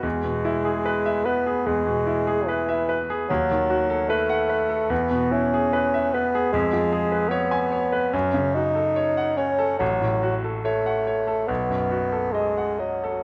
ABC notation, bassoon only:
X:1
M:4/4
L:1/8
Q:1/4=73
K:E
V:1 name="Bassoon"
G,3 B, G,2 E, z | F,2 A,2 B, C2 B, | G,2 B,2 C D2 C | F, z A,2 B,2 G, F, |]